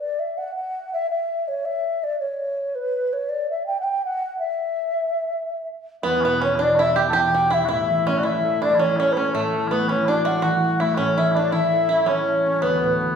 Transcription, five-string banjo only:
6.03 6.23 B3 medium
6.25 6.41 B3 medium
6.42 6.58 C#4 medium
6.59 6.78 D4 medium
6.79 6.97 E4 medium
6.96 7.12 G4 medium
7.13 7.35 G4 loud
7.34 7.50 F#4 medium
7.50 7.67 E4 medium
7.68 8.04 E4 medium
8.07 8.23 C#4 medium
8.23 8.61 E4 medium
8.62 8.78 D4 medium
8.79 8.98 C#4 medium
9.00 9.15 C#4 medium
9.17 9.32 C#4 medium
9.35 9.73 A3 medium
9.71 9.87 B3 medium
9.89 10.10 C#4 medium
10.08 10.24 D4 medium
10.25 10.41 F#4 medium
10.42 10.80 F#4 medium
10.80 10.96 E4 medium
10.97 11.16 C#4 medium
11.18 11.34 E4 medium
11.37 11.52 D4 medium
11.52 11.87 E4 medium
11.89 12.07 E4 medium
12.06 12.58 C#4 medium
12.62 12.97 B3 medium

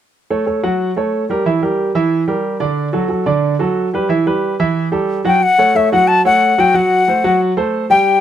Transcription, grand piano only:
0.30 0.44 A3 medium
0.30 0.44 A4 medium
0.30 0.44 C#5 medium
0.46 0.60 A3 medium
0.46 0.60 A4 soft
0.46 0.60 C#5 medium
0.63 0.90 F#3 medium
0.63 0.90 F#4 medium
0.63 0.90 F#5 medium
0.96 1.23 A3 medium
0.96 1.24 A4 medium
0.96 1.24 C#5 medium
1.29 1.43 G3 medium
1.29 1.43 G4 medium
1.29 1.43 A#4 medium
1.46 1.59 E3 medium
1.46 1.59 E4 medium
1.46 1.59 E5 medium
1.62 1.89 G3 medium
1.62 1.89 G4 medium
1.62 1.89 A#4 medium
1.95 2.22 E3 medium
1.95 2.22 E4 medium
1.95 2.22 E5 medium
2.28 2.55 G3 medium
2.28 2.55 G4 medium
2.28 2.55 A#4 medium
2.60 2.88 D3 medium
2.60 2.88 D4 medium
2.60 2.88 D5 medium
2.93 3.07 F#3 medium
2.93 3.07 F#4 medium
2.93 3.07 A4 medium
3.09 3.23 F#3 medium
3.09 3.24 F#4 medium
3.09 3.24 A4 medium
3.26 3.54 D3 medium
3.26 3.54 D4 medium
3.26 3.54 D5 medium
3.59 3.87 F#3 medium
3.59 3.87 F#4 medium
3.59 3.87 A4 medium
3.93 4.07 G3 medium
3.93 4.07 G4 medium
3.93 4.08 B4 medium
4.09 4.23 E3 medium
4.09 4.23 E4 medium
4.09 4.23 E5 medium
4.26 4.53 G3 medium
4.26 4.54 G4 medium
4.26 4.54 B4 medium
4.60 4.87 E3 medium
4.60 4.87 E4 medium
4.60 4.87 E5 medium
4.92 5.19 G3 medium
4.92 5.19 G4 medium
4.92 5.19 A4 medium
5.25 5.39 F#3 medium
5.25 5.39 F#4 medium
5.25 5.39 F#5 medium
5.58 5.72 A3 medium
5.58 5.72 A4 medium
5.58 5.72 C#5 medium
5.75 5.88 A3 medium
5.75 5.89 A4 medium
5.75 5.89 C#5 medium
5.92 6.19 F#3 medium
5.92 6.19 F#4 medium
5.92 6.19 F#5 medium
6.25 6.52 A3 medium
6.25 6.52 A4 medium
6.25 6.52 C#5 medium
6.58 6.72 F#3 medium
6.58 6.72 F#4 medium
6.58 6.72 F#5 medium
6.74 7.01 F#3 medium
6.74 7.01 F#4 medium
6.74 7.01 F#5 medium
7.08 7.21 A3 medium
7.08 7.21 A4 medium
7.08 7.22 C5 medium
7.24 7.51 F#3 medium
7.24 7.51 F#4 medium
7.24 7.51 F#5 medium
7.57 7.84 A3 medium
7.57 7.84 A4 medium
7.57 7.84 C5 medium
7.90 8.17 G3 medium
7.90 8.17 G4 medium
7.90 8.17 G5 medium

